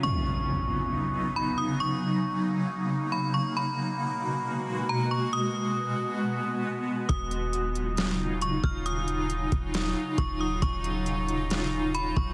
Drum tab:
HH |--------|--------|--------|--------|
SD |--------|--------|--------|--------|
BD |--------|--------|--------|--------|

HH |xxxxx-x-|xxxxx-x-|xxxxx-x-|
SD |----o---|----o---|----o---|
BD |o------o|---o--o-|o------o|